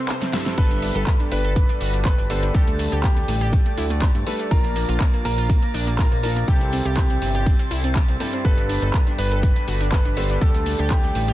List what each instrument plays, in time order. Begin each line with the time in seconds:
Already playing: grand piano C3 G3 C4 E4 A4, ambient pad A4 E5 G5 C6
0.08 synth pluck C5, clap, closed hi-hat, tambourine
0.21 synth pluck C4, snare, closed hi-hat, tambourine
0.33 grand piano G2 G3 C4 E4 A4, synth pluck E5, snare, open hi-hat, tambourine
0.46 synth pluck C4, snare, closed hi-hat, tambourine
0.57 analog synth bass G1, grand piano G2 G3 B3 D4 A4 B4, synth pluck A4, ambient pad D5 B5, digital synth lead B5, synth texture A6, kick, closed hi-hat, tambourine, crash
0.70 synth pluck D4, closed hi-hat, tambourine
0.82 synth pluck D4, open hi-hat, tambourine
0.95 analog synth bass G1, synth pluck A4, closed hi-hat, tambourine
1.07 synth pluck D4, kick, clap, closed hi-hat, tambourine
1.19 synth pluck D4, closed hi-hat, tambourine
1.32 analog synth bass G1, synth pluck D4, grand piano B4, digital synth lead B5, open hi-hat, tambourine
1.44 synth pluck A4, closed hi-hat, tambourine
1.56 synth pluck D4, kick, closed hi-hat, tambourine
1.69 synth pluck D4, closed hi-hat, tambourine
1.80 analog synth bass G1, synth pluck F#4, open hi-hat, tambourine
1.94 synth pluck D4, closed hi-hat, tambourine
2.05 synth pluck A4, grand piano B4, digital synth lead B5, kick, clap, closed hi-hat, tambourine
2.18 analog synth bass G1, synth pluck D4, closed hi-hat, tambourine
2.30 grand piano D3 G3 B3 D4 A4, synth pluck C5, open hi-hat, tambourine
2.43 synth pluck D4, closed hi-hat, tambourine
2.54 analog synth bass D2, grand piano A3 D4 A4, synth pluck G4, digital synth lead A5, ambient pad D6, kick, closed hi-hat, tambourine
2.67 synth pluck A3, closed hi-hat, tambourine
2.79 synth pluck A3, open hi-hat, tambourine
2.92 analog synth bass D2, synth pluck G4, closed hi-hat, tambourine
3.04 synth pluck A3, grand piano G4, digital synth lead G5, kick, clap, closed hi-hat, tambourine
3.17 synth pluck A3, closed hi-hat, tambourine
3.28 analog synth bass A1, synth pluck A3, open hi-hat, tambourine
3.41 synth pluck G4, closed hi-hat, tambourine
3.53 synth pluck A3, kick, closed hi-hat, tambourine
3.66 synth pluck A3, closed hi-hat, tambourine
3.77 analog synth bass D2, synth pluck E4, open hi-hat, tambourine
3.90 synth pluck A3, closed hi-hat, tambourine
4.02 synth pluck G4, kick, clap, closed hi-hat, tambourine
4.15 analog synth bass G2, synth pluck A3, closed hi-hat, tambourine
4.27 grand piano G3 A3 D4 A4, synth pluck B4, open hi-hat, tambourine
4.39 synth pluck A3, closed hi-hat, tambourine
4.51 analog synth bass A#1, grand piano A#2 F3 A#4, synth pluck F4, ambient pad A#4 F5 D6, digital synth lead A#5, kick, closed hi-hat, tambourine
4.64 synth pluck A#3, closed hi-hat, tambourine
4.76 synth pluck A#3, open hi-hat, tambourine
4.88 analog synth bass A#1, synth pluck F4, closed hi-hat, tambourine
5.00 synth pluck A#3, kick, clap, closed hi-hat, tambourine
5.13 synth pluck A#3, closed hi-hat, tambourine
5.25 analog synth bass A#1, synth pluck A#3, grand piano A#4, digital synth lead A#5, open hi-hat, tambourine
5.38 synth pluck F4, closed hi-hat, tambourine
5.49 synth pluck A#3, kick, closed hi-hat, tambourine
5.62 synth pluck A#3, closed hi-hat, tambourine
5.74 analog synth bass A#1, synth pluck D4, open hi-hat, tambourine
5.87 synth pluck A#3, closed hi-hat, tambourine
5.99 synth pluck F4, grand piano A#4, digital synth lead A#5, kick, clap, closed hi-hat, tambourine
6.12 analog synth bass A#1, synth pluck A#3, closed hi-hat, tambourine
6.23 grand piano F3 A#3 D4 A#4, synth pluck A4, open hi-hat, tambourine
6.36 synth pluck A#3, closed hi-hat, tambourine
6.48 analog synth bass C2, grand piano C3 G3 C4 E4 G4 A4, synth pluck G4, ambient pad A4 E5 G5 C6, digital synth lead G5, kick, closed hi-hat, tambourine
6.61 synth pluck C4, closed hi-hat, tambourine
6.72 synth pluck C4, open hi-hat, tambourine
6.85 analog synth bass C2, synth pluck G4, closed hi-hat, tambourine
6.97 synth pluck C4, grand piano G4, digital synth lead G5, kick, clap, closed hi-hat, tambourine
7.10 synth pluck C4, closed hi-hat, tambourine
7.22 analog synth bass G1, synth pluck C4, open hi-hat, tambourine
7.34 synth pluck G4, closed hi-hat, tambourine
7.46 synth pluck C4, kick, closed hi-hat, tambourine
7.59 synth pluck C4, closed hi-hat, tambourine
7.71 analog synth bass C2, synth pluck E4, open hi-hat, tambourine
7.84 synth pluck C4, closed hi-hat, tambourine
7.95 synth pluck G4, kick, clap, closed hi-hat, tambourine
8.08 analog synth bass C2, synth pluck C4, closed hi-hat, tambourine
8.20 grand piano G2 G3 C4 E4 G4, synth pluck A4, open hi-hat, tambourine
8.33 synth pluck C4, closed hi-hat, tambourine
8.45 analog synth bass G1, grand piano G3 B3 D4 A4 B4, synth pluck A4, ambient pad D5 B5, digital synth lead B5, kick, closed hi-hat, tambourine
8.58 synth pluck D4, closed hi-hat, tambourine
8.69 synth pluck D4, open hi-hat, tambourine
8.82 analog synth bass G1, synth pluck A4, closed hi-hat, tambourine
8.94 synth pluck D4, kick, clap, closed hi-hat, tambourine
9.06 synth pluck D4, closed hi-hat, tambourine
9.18 analog synth bass G1, synth pluck D4, grand piano B4, digital synth lead B5, open hi-hat, tambourine
9.31 synth pluck A4, closed hi-hat, tambourine
9.43 synth pluck D4, kick, closed hi-hat, tambourine
9.56 synth pluck D4, closed hi-hat, tambourine
9.68 analog synth bass G1, synth pluck F#4, open hi-hat, tambourine
9.81 synth pluck D4, closed hi-hat, tambourine
9.92 synth pluck A4, grand piano B4, digital synth lead B5, kick, clap, closed hi-hat, tambourine
10.05 analog synth bass G1, synth pluck D4, closed hi-hat, tambourine
10.17 grand piano D3 G3 B3 D4 A4, synth pluck C5, open hi-hat, tambourine
10.30 synth pluck D4, closed hi-hat, tambourine
10.41 analog synth bass D2, grand piano D3 G3 A3 D4 A4, synth pluck G4, digital synth lead A5, ambient pad D6, kick, closed hi-hat, tambourine
10.54 synth pluck A3, closed hi-hat, tambourine
10.66 synth pluck A3, open hi-hat, tambourine
10.79 analog synth bass D2, synth pluck G4, closed hi-hat, tambourine
10.90 synth pluck A3, grand piano G4, digital synth lead G5, kick, clap, closed hi-hat, tambourine
11.04 synth pluck A3, closed hi-hat, tambourine
11.15 analog synth bass A1, synth pluck A3, open hi-hat, tambourine
11.28 synth pluck G4, closed hi-hat, tambourine